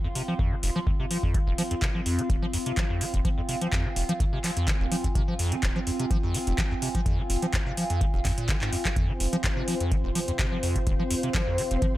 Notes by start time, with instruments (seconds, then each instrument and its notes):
Already playing: ambient pad C4 F4 F5 C6
0.04 acid bass F2
0.15 acid bass C3, open hi-hat
0.28 acid bass F3
0.39 acid bass F2, kick
0.52 acid bass F3
0.63 acid bass F1, open hi-hat
0.76 acid bass F3
0.87 acid bass F2, kick
1.00 acid bass C3
1.11 acid bass F3, open hi-hat
1.23 acid bass F2, kick
1.34 acid bass F3, kick, closed hi-hat
1.47 acid bass F1
1.58 acid bass F3, open hi-hat
1.71 acid bass F2, closed hi-hat
1.82 acid bass C3, kick, clap, closed hi-hat
1.95 acid bass F3
2.06 acid bass F2, open hi-hat
2.19 acid bass F3, closed hi-hat
2.30 acid bass F1, kick, closed hi-hat
2.42 acid bass F3
2.53 acid bass F2, open hi-hat
2.66 acid bass C3, closed hi-hat
2.77 acid bass F3, kick, clap, closed hi-hat
2.90 acid bass F2
2.95 ambient pad G#5
3.01 acid bass F3, open hi-hat
3.14 acid bass F1, kick, closed hi-hat
3.25 acid bass F3, kick, closed hi-hat
3.38 acid bass F2
3.49 acid bass C3, open hi-hat
3.61 acid bass F3, closed hi-hat
3.73 acid bass F2, kick, clap, closed hi-hat
3.85 acid bass F3
3.96 acid bass F1, open hi-hat
4.09 acid bass F3, closed hi-hat
4.20 acid bass F2, kick, closed hi-hat
4.33 acid bass C3
4.44 acid bass F3, clap, open hi-hat
4.57 acid bass F2, closed hi-hat
4.68 acid bass F3, kick, clap, closed hi-hat
4.80 acid bass F1
4.92 acid bass F3, open hi-hat
5.04 acid bass F2, kick, closed hi-hat
5.15 acid bass C3, kick, closed hi-hat
5.28 acid bass F3
5.39 acid bass F2, open hi-hat
5.52 acid bass F3, closed hi-hat
5.63 acid bass F1, kick, clap, closed hi-hat
5.76 acid bass F3
5.87 acid bass F2, open hi-hat
5.99 acid bass C3, closed hi-hat
6.11 acid bass F3, kick, closed hi-hat
6.23 acid bass F2
6.34 acid bass F3, open hi-hat
6.47 acid bass F1, closed hi-hat
6.58 acid bass F3, kick, clap, closed hi-hat
6.71 acid bass F2
6.82 acid bass C3, open hi-hat
6.95 acid bass F3, kick, closed hi-hat
7.06 acid bass F2, kick, closed hi-hat
7.19 acid bass F3
7.30 acid bass F1, open hi-hat
7.42 acid bass F3, closed hi-hat
7.53 acid bass F2, kick, clap, closed hi-hat
7.66 acid bass C3
7.77 acid bass F3, open hi-hat
7.90 acid bass F2, closed hi-hat
8.01 acid bass F3, kick, closed hi-hat
8.14 acid bass F1
8.25 acid bass F2, kick, clap, open hi-hat
8.38 acid bass A#2, closed hi-hat
8.49 acid bass D#3, kick, clap, closed hi-hat
8.61 acid bass G#2, clap
8.73 acid bass F#2, open hi-hat
8.85 acid bass F3, kick, clap, closed hi-hat
8.96 acid bass F2, string machine C4 C5, kick, closed hi-hat
9.09 acid bass F3
9.20 acid bass F1, open hi-hat
9.33 acid bass F3, closed hi-hat
9.44 acid bass F2, kick, clap, closed hi-hat
9.57 acid bass C3
9.68 acid bass F3, open hi-hat
9.80 acid bass F2, closed hi-hat
9.92 acid bass F3, kick, closed hi-hat
10.04 acid bass F1
10.15 acid bass F3, open hi-hat
10.28 acid bass F2, closed hi-hat
10.39 acid bass C3, kick, clap, closed hi-hat
10.52 acid bass F3
10.57 ambient pad C6
10.63 acid bass F2, open hi-hat
10.76 acid bass F3, kick, closed hi-hat
10.87 acid bass F1, kick, closed hi-hat
10.99 acid bass F3
11.11 acid bass F2, open hi-hat
11.23 acid bass C3, closed hi-hat
11.34 acid bass F3, kick, clap, closed hi-hat
11.47 acid bass F2
11.58 acid bass F3, open hi-hat
11.71 acid bass F1, closed hi-hat
11.82 acid bass F3, kick, closed hi-hat